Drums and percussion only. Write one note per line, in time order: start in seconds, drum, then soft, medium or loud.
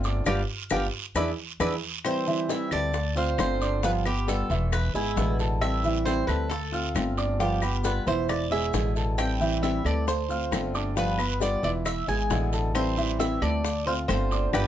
0.04 high bongo soft
0.04 short guiro medium
0.04 maracas soft
0.26 low bongo loud
0.26 long guiro loud
0.26 claves medium
0.26 maracas medium
0.70 low bongo loud
0.70 long guiro loud
0.70 claves loud
0.70 maracas loud
1.15 low bongo loud
1.15 long guiro medium
1.15 claves medium
1.15 maracas medium
1.60 low bongo medium
1.60 long guiro loud
1.60 claves medium
1.60 maracas medium
2.04 high bongo medium
2.04 long guiro medium
2.04 claves medium
2.04 maracas medium
2.27 maracas soft
2.49 high bongo medium
2.49 short guiro medium
2.49 maracas medium
2.71 short guiro medium
2.71 claves medium
2.71 maracas soft
2.94 high bongo medium
2.94 long guiro medium
2.94 maracas medium
3.16 maracas soft
3.38 high bongo medium
3.38 low bongo medium
3.38 short guiro medium
3.38 claves medium
3.38 maracas medium
3.61 short guiro medium
3.61 maracas soft
3.83 high bongo medium
3.83 long guiro medium
3.83 maracas medium
4.06 high bongo soft
4.06 claves medium
4.06 maracas soft
4.28 high bongo medium
4.28 short guiro medium
4.28 maracas medium
4.50 short guiro medium
4.50 maracas soft
4.72 high bongo medium
4.72 long guiro medium
4.72 claves medium
4.72 maracas medium
4.95 high bongo soft
4.95 maracas soft
5.17 high bongo medium
5.17 low bongo medium
5.17 short guiro medium
5.17 maracas medium
5.39 high bongo soft
5.39 short guiro medium
5.39 maracas soft
5.62 high bongo medium
5.62 long guiro medium
5.62 claves medium
5.62 maracas medium
5.84 maracas soft
6.06 high bongo medium
6.06 short guiro medium
6.06 maracas medium
6.28 short guiro medium
6.28 claves medium
6.28 maracas soft
6.51 high bongo medium
6.51 long guiro medium
6.51 maracas medium
6.73 maracas soft
6.95 high bongo medium
6.95 low bongo medium
6.95 short guiro medium
6.95 claves medium
6.95 maracas medium
7.17 short guiro medium
7.17 maracas soft
7.40 high bongo medium
7.40 long guiro medium
7.40 maracas medium
7.62 high bongo soft
7.62 claves medium
7.62 maracas soft
7.84 high bongo medium
7.84 short guiro medium
7.84 maracas medium
8.07 short guiro medium
8.07 maracas soft
8.29 high bongo medium
8.29 long guiro medium
8.29 claves medium
8.29 maracas medium
8.51 high bongo soft
8.51 maracas soft
8.74 high bongo medium
8.74 low bongo medium
8.74 short guiro medium
8.74 maracas medium
8.96 high bongo soft
8.96 short guiro medium
8.96 maracas soft
9.18 high bongo medium
9.18 long guiro medium
9.18 claves medium
9.18 maracas medium
9.41 maracas soft
9.63 high bongo medium
9.63 short guiro medium
9.63 maracas medium
9.86 short guiro medium
9.86 claves medium
9.86 maracas soft
10.08 high bongo medium
10.08 long guiro medium
10.08 maracas medium
10.30 maracas soft
10.52 high bongo medium
10.52 low bongo medium
10.52 short guiro medium
10.52 claves medium
10.52 maracas medium
10.75 short guiro medium
10.75 maracas soft
10.97 high bongo medium
10.97 long guiro medium
10.97 maracas medium
11.19 high bongo soft
11.19 claves medium
11.19 maracas soft
11.41 high bongo medium
11.41 short guiro medium
11.41 maracas medium
11.63 short guiro medium
11.63 maracas soft
11.86 high bongo medium
11.86 long guiro medium
11.86 claves medium
11.86 maracas medium
12.08 high bongo soft
12.08 maracas soft
12.30 high bongo medium
12.30 low bongo medium
12.30 short guiro medium
12.30 maracas medium
12.53 high bongo soft
12.53 short guiro medium
12.53 maracas soft
12.75 high bongo medium
12.75 long guiro medium
12.75 claves medium
12.75 maracas medium
12.98 maracas soft
13.19 high bongo medium
13.19 short guiro medium
13.19 maracas medium
13.42 short guiro medium
13.42 claves medium
13.42 maracas soft
13.64 high bongo medium
13.64 long guiro medium
13.64 maracas medium
13.88 maracas soft
14.09 high bongo medium
14.09 low bongo medium
14.09 short guiro medium
14.09 claves medium
14.09 maracas medium
14.31 short guiro medium
14.31 maracas soft
14.53 low bongo loud
14.53 long guiro loud
14.53 claves loud
14.53 maracas loud